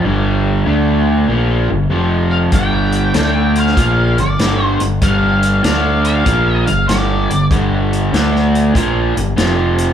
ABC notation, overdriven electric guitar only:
X:1
M:4/4
L:1/8
Q:"Swing" 1/4=96
K:Gm
V:1 name="Overdriven electric guitar" clef=bass
[G,,D,G,]2 [D,A,D]2 [B,,F,B,] [G,,D,] [F,,C,F,]2 | [G,,D,G,]2 [D,A,D]2 [B,,F,B,] [G,,D,] [G,,D,G,] [G,,D,] | [G,,D,G,]2 [D,A,D]2 [B,,F,B,] [G,,D,] [G,,D,G,] [G,,D,] | [G,,D,G,]2 [D,A,D]2 [B,,F,B,] [G,,D,] [F,,C,F,]2 |]